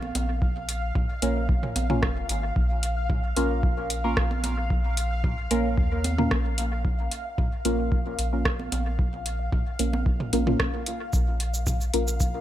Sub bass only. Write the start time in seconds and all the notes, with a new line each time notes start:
Already playing: A#1
0.15 A#1
1.22 A#1
1.76 A#1
2.03 F1
2.29 G#1
2.56 A#1
3.36 A#1
5.51 A#1
5.78 D#2
6.31 A#1
7.65 A#1
8.19 A#1
8.72 A#1
9.79 A#1
10.33 A#1
11.13 A#1
11.94 A#1